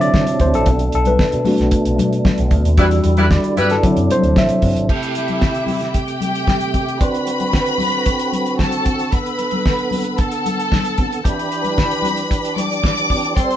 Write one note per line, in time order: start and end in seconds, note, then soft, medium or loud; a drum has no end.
0.00 0.63 C3 medium
0.00 0.65 F#3 medium
0.00 0.69 F#3 medium
0.00 0.69 C4 soft
0.00 2.74 D4 medium
0.00 0.68 E4 medium
0.00 0.41 C5 medium
0.00 0.69 D5 loud
0.00 0.69 E5 loud
0.00 closed hi-hat soft
0.14 0.24 D3 loud
0.14 kick loud
0.14 snare loud
0.14 muted conga soft
0.14 high conga medium
0.27 closed hi-hat medium
0.40 0.51 D2 loud
0.40 0.54 C5 medium
0.40 kick medium
0.40 closed hi-hat medium
0.40 low conga medium
0.54 0.64 A#1 medium
0.54 0.94 A4 medium
0.54 closed hi-hat medium
0.66 0.87 B1 loud
0.66 2.76 B2 medium
0.66 2.75 A3 medium
0.66 kick loud
0.66 closed hi-hat medium
0.66 muted conga soft
0.66 low conga medium
0.79 closed hi-hat soft
0.92 1.15 B1 medium
0.92 1.08 A4 medium
0.92 closed hi-hat medium
1.05 1.82 B4 medium
1.05 closed hi-hat soft
1.05 high conga medium
1.19 muted picked electric bass stroke medium
1.19 kick loud
1.19 snare loud
1.19 muted conga soft
1.32 1.43 B2 loud
1.32 closed hi-hat soft
1.45 2.21 A3 medium
1.45 2.21 D4 medium
1.45 2.22 F#4 medium
1.45 open hi-hat medium
1.45 high conga medium
1.45 low conga medium
1.58 1.70 B1 loud
1.58 snare soft
1.58 closed hi-hat soft
1.71 kick loud
1.71 closed hi-hat medium
1.71 muted conga soft
1.85 1.96 B1 loud
1.85 closed hi-hat medium
1.98 2.20 B2 medium
1.98 closed hi-hat medium
1.98 muted conga soft
1.98 high conga medium
2.13 closed hi-hat soft
2.24 kick loud
2.24 snare loud
2.24 muted conga soft
2.24 high conga medium
2.38 2.49 B1 loud
2.38 closed hi-hat medium
2.51 2.62 D2 loud
2.51 kick medium
2.51 closed hi-hat medium
2.51 low conga medium
2.65 2.78 D#2 medium
2.65 closed hi-hat medium
2.77 2.99 E2 loud
2.77 3.83 D3 medium
2.77 3.13 G3 medium
2.77 2.86 G3 medium
2.77 3.83 G3 medium
2.77 3.14 D4 medium
2.77 2.86 E4 medium
2.77 3.83 E4 medium
2.77 3.14 F#4 medium
2.77 2.86 B4 loud
2.77 kick loud
2.77 closed hi-hat medium
2.77 muted conga soft
2.77 low conga medium
2.91 closed hi-hat medium
3.04 3.35 E2 medium
3.04 closed hi-hat medium
3.04 muted conga soft
3.17 3.26 G3 medium
3.17 3.26 E4 medium
3.17 3.26 B4 medium
3.17 closed hi-hat soft
3.17 high conga medium
3.31 3.56 D5 medium
3.31 kick loud
3.31 snare loud
3.31 muted conga soft
3.44 closed hi-hat soft
3.57 3.78 G2 medium
3.57 3.74 G3 medium
3.57 3.74 E4 medium
3.57 3.74 B4 loud
3.57 3.64 B4 medium
3.57 closed hi-hat medium
3.57 high conga medium
3.57 low conga medium
3.70 4.12 A4 loud
3.70 snare soft
3.70 closed hi-hat soft
3.83 4.88 C3 medium
3.83 3.94 D3 loud
3.83 4.88 F#3 medium
3.83 4.59 F#3 medium
3.83 4.60 C4 medium
3.83 4.88 D4 medium
3.83 4.60 E4 medium
3.83 kick loud
3.83 closed hi-hat loud
3.97 4.07 F#2 medium
3.97 closed hi-hat medium
4.10 4.38 C5 loud
4.10 closed hi-hat medium
4.10 muted conga soft
4.10 high conga medium
4.23 4.33 D2 medium
4.23 closed hi-hat soft
4.36 4.47 A1 medium
4.36 4.86 E5 loud
4.36 kick loud
4.36 snare loud
4.36 high conga medium
4.49 closed hi-hat medium
4.62 4.73 G1 loud
4.62 kick medium
4.62 open hi-hat medium
4.62 muted conga soft
4.62 low conga medium
4.77 4.87 G#1 medium
4.77 closed hi-hat medium
4.89 6.99 C3 medium
4.89 6.99 A3 medium
4.89 5.94 E4 medium
4.89 6.99 G4 medium
4.89 5.94 E5 medium
4.89 kick loud
4.89 crash medium
5.03 closed hi-hat soft
5.15 closed hi-hat medium
5.15 muted conga soft
5.28 closed hi-hat soft
5.28 high conga medium
5.42 kick loud
5.42 snare loud
5.42 muted conga soft
5.55 closed hi-hat soft
5.67 open hi-hat medium
5.67 muted conga soft
5.67 high conga medium
5.67 low conga medium
5.81 snare soft
5.81 closed hi-hat soft
5.94 6.98 G4 medium
5.94 6.98 G5 medium
5.94 kick medium
5.94 closed hi-hat medium
6.08 closed hi-hat soft
6.21 closed hi-hat medium
6.21 high conga medium
6.35 closed hi-hat soft
6.48 kick loud
6.48 snare medium
6.48 muted conga soft
6.48 high conga medium
6.60 closed hi-hat soft
6.74 kick medium
6.74 closed hi-hat medium
6.74 muted conga soft
6.74 low conga medium
6.88 closed hi-hat soft
7.00 11.21 D3 medium
7.00 9.11 C4 medium
7.00 9.11 F#4 medium
7.00 8.56 B4 medium
7.00 8.57 B5 medium
7.00 kick loud
7.00 closed hi-hat medium
7.00 muted conga soft
7.15 closed hi-hat soft
7.26 closed hi-hat medium
7.26 muted conga soft
7.40 closed hi-hat soft
7.40 high conga medium
7.53 kick loud
7.53 snare loud
7.66 closed hi-hat soft
7.78 open hi-hat medium
7.78 muted conga soft
7.78 high conga medium
7.78 low conga medium
7.92 closed hi-hat soft
8.06 kick medium
8.06 closed hi-hat medium
8.06 muted conga soft
8.19 closed hi-hat medium
8.33 closed hi-hat medium
8.33 high conga medium
8.46 closed hi-hat soft
8.59 9.12 A4 medium
8.59 9.12 A5 medium
8.59 kick medium
8.59 snare medium
8.59 muted conga soft
8.59 high conga medium
8.72 closed hi-hat soft
8.85 kick medium
8.85 closed hi-hat medium
8.85 muted conga soft
8.85 low conga medium
8.99 closed hi-hat soft
9.12 11.22 B3 medium
9.12 11.22 A4 medium
9.12 10.17 B4 medium
9.12 10.17 B5 medium
9.12 kick loud
9.12 closed hi-hat medium
9.26 closed hi-hat soft
9.39 closed hi-hat medium
9.39 muted conga soft
9.51 closed hi-hat soft
9.51 high conga medium
9.66 kick loud
9.66 snare loud
9.78 closed hi-hat soft
9.91 open hi-hat medium
9.91 muted conga soft
9.91 high conga medium
9.91 low conga medium
10.04 closed hi-hat soft
10.18 11.22 A4 medium
10.18 11.22 A5 medium
10.18 kick loud
10.18 closed hi-hat medium
10.18 muted conga soft
10.31 closed hi-hat medium
10.46 closed hi-hat medium
10.46 high conga medium
10.60 closed hi-hat soft
10.72 kick loud
10.72 snare medium
10.72 muted conga soft
10.72 high conga medium
10.85 closed hi-hat soft
10.98 kick medium
10.98 closed hi-hat medium
10.98 low conga medium
11.13 closed hi-hat soft
11.24 13.34 E3 medium
11.24 13.34 D4 medium
11.24 13.34 G4 medium
11.24 12.55 B4 medium
11.24 12.55 B5 medium
11.24 kick loud
11.24 closed hi-hat medium
11.24 muted conga soft
11.24 low conga medium
11.39 closed hi-hat soft
11.52 closed hi-hat medium
11.64 closed hi-hat soft
11.64 high conga medium
11.78 kick loud
11.78 snare loud
11.78 muted conga soft
11.91 closed hi-hat soft
12.02 closed hi-hat medium
12.02 muted conga soft
12.02 high conga medium
12.02 low conga medium
12.17 closed hi-hat soft
12.30 kick medium
12.30 closed hi-hat medium
12.30 muted conga soft
12.45 closed hi-hat medium
12.56 13.34 D5 medium
12.56 13.35 D6 medium
12.56 closed hi-hat medium
12.56 high conga medium
12.72 closed hi-hat soft
12.83 kick loud
12.83 snare medium
12.83 high conga medium
12.97 closed hi-hat soft
13.10 kick medium
13.10 open hi-hat medium
13.10 low conga medium
13.25 closed hi-hat soft
13.36 13.57 G3 medium
13.36 13.57 C4 medium
13.36 13.57 A4 medium
13.36 13.57 C5 medium
13.36 13.57 C6 medium
13.36 kick loud
13.36 closed hi-hat medium
13.51 closed hi-hat soft